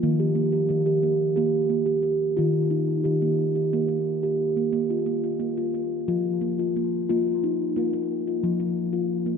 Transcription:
<<
  \new Staff \with { instrumentName = "Steel tongue drum" } { \time 7/8 \key ees \major \tempo 4 = 89 bes16 g'16 bes16 g'16 bes16 g'16 bes8 g'8 bes16 g'16 bes8 | f'8 ees'8 g'16 bes8 g'8 bes8 g'8 bes16 | bes16 f'16 bes16 f'16 bes16 f'16 bes8 f'8 bes16 f'16 bes8 | f'8 ees'8 f'16 bes8 f'8 bes8 f'8 bes16 | }
  \new Staff \with { instrumentName = "Steel tongue drum" } { \clef bass \time 7/8 \key ees \major ees4 ees4 bes8 r4 | ees4 ees4 bes8 r4 | r2 f8 r4 | bes4 bes4 f8 r4 | }
>>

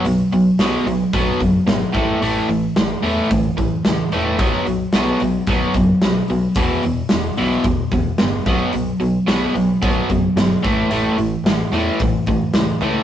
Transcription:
<<
  \new Staff \with { instrumentName = "Overdriven electric guitar" } { \clef bass \time 4/4 \key a \mixolydian \tempo 4 = 110 <b, fis>8 <b, fis>8 <b, fis b>8 <b, fis>8 <b, fis b>8 <b, fis>8 <b, fis>8 <a, e a>8 | <a, e a>8 <a, e>8 <a, e>8 <a, e a>8 <a, e>8 <a, e>8 <a, e>8 <a, e a>8 | <b, fis b>8 <b, fis>8 <b, fis b>8 <b, fis>8 <b, fis b>8 <b, fis>8 <b, fis>8 <b, fis>8 | <e, b, e>8 <e, b,>8 <e, b,>8 <e, b, e>8 <e, b,>8 <e, b,>8 <e, b,>8 <b, fis b>8 |
<b, fis>8 <b, fis>8 <b, fis b>8 <b, fis>8 <b, fis b>8 <b, fis>8 <b, fis>8 <a, e a>8 | <a, e a>8 <a, e>8 <a, e>8 <a, e a>8 <a, e>8 <a, e>8 <a, e>8 <a, e a>8 | }
  \new Staff \with { instrumentName = "Picked electric bass" } { \clef bass \time 4/4 \key a \mixolydian b,,8 b,,8 b,,8 b,,8 b,,8 fis,,8 gis,,8 a,,8 | a,,8 a,,8 a,,8 e,8 a,,8 a,,8 cis,8 e,,8 | b,,8 b,,8 b,,8 b,,8 b,,8 fis,,8 b,,8 b,,8 | e,,8 e,,8 e,,8 b,,8 e,,8 e,,8 g,,8 b,,8 |
b,,8 b,,8 b,,8 b,,8 b,,8 fis,,8 g,,8 a,,8 | a,,8 a,,8 a,,8 e,8 a,,8 a,,8 cis,8 cis,8 | }
  \new DrumStaff \with { instrumentName = "Drums" } \drummode { \time 4/4 hho8 hho8 <hho sn>8 hho8 <hho bd>8 <hho bd>8 <hho sn>8 <hho bd>8 | hho8 hho8 <hho sn>8 hho8 <hho bd>8 <hho bd>8 <hho sn>8 hho8 | <hho bd>8 hho8 <hho sn>8 hho8 <hho bd>8 <hho bd>8 <hho sn>8 hho8 | <hho bd>8 hho8 <hho sn>8 hho8 <hho bd>8 <hho bd>8 <hho sn>8 <hho bd>8 |
hho8 hho8 <hho sn>8 hho8 <hho bd>8 <hho bd>8 <hho sn>8 <hho bd>8 | hho8 hho8 <hho sn>8 hho8 <hho bd>8 <hho bd>8 <hho sn>8 hho8 | }
>>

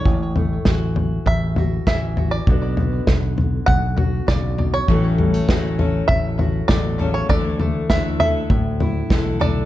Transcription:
<<
  \new Staff \with { instrumentName = "Five-string banjo" } { \time 4/4 \key a \mixolydian \tempo 4 = 99 cis''2 e''4 e''8. d''16~ | d''2 fis''4 d''8. cis''16~ | cis''2 e''4 d''8. cis''16 | d''4 e''8 e''2 d''8 | }
  \new Staff \with { instrumentName = "Steel-string acoustic guitar" } { \time 4/4 \key a \mixolydian r1 | r1 | <a, e fis a cis' a'>4 <fis a cis' a'>8 <fis a cis' a'>4. <fis a a'>8 <fis a cis' a'>8 | <d e a e' a'>4 <e a e' a'>8 <a e' a'>4. <e a e' a'>8 <a e' a'>8 | }
  \new Staff \with { instrumentName = "Steel-string acoustic guitar" } { \clef bass \time 4/4 \key a \mixolydian << { e'8 a8 fis'4. fis'4 fis'8 | <d b d' fis'>8 b2 fis'4. | <e a fis'>8 g16 a16 fis'4. fis'4. | r8 a8 d'4. e'4 d'8 | } \\ { a,4 e4 e,4 e4 | b,4 d4 fis,4 cis8 b,8 | a,4 e4 e,4 b,8 cis8 | d,4 d4 a,4 d4 | } >> }
  \new Staff \with { instrumentName = "Fingered electric bass" } { \clef bass \time 4/4 \key a \mixolydian a,,4 a,,4 a,,4 a,,4 | b,,4 b,,4 b,,4 b,,4 | a,,4 a,,4 a,,4 a,,4 | d,4 d,4 d,4 b,,4 | }
  \new DrumStaff \with { instrumentName = "Drums" } \drummode { \time 4/4 <bd tomfh>8 tomfh8 <bd sn tomfh>8 tomfh8 <bd tomfh>8 tomfh8 <bd sn tomfh>8 tomfh8 | <bd tomfh>8 tomfh8 <bd sn tomfh>8 tomfh8 <bd tomfh>8 tomfh8 <bd sn tomfh>8 tomfh8 | <bd tomfh>8 tomfh8 <bd sn tomfh>8 tomfh8 <bd tomfh>8 tomfh8 <bd sn tomfh>8 tomfh8 | <bd tomfh>8 tomfh8 <bd sn tomfh>8 tomfh8 <bd tomfh>8 tomfh8 <bd sn tomfh>8 tomfh8 | }
>>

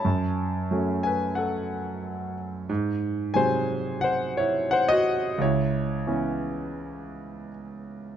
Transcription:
<<
  \new Staff \with { instrumentName = "Grand piano" } { \time 4/4 \key cis \minor \tempo 4 = 88 <cis'' a''>4. <b' gis''>8 <a' fis''>4. r8 | r4 <bis' gis''>4 <bis' fis''>8 <e' cis''>8 <bis' fis''>16 <fis' dis''>8. | <e' cis''>2. r4 | }
  \new Staff \with { instrumentName = "Grand piano" } { \clef bass \time 4/4 \key cis \minor fis,4 <fis a cis'>2. | gis,4 <bis, fis gis>2. | cis,4 <e b cis'>2. | }
>>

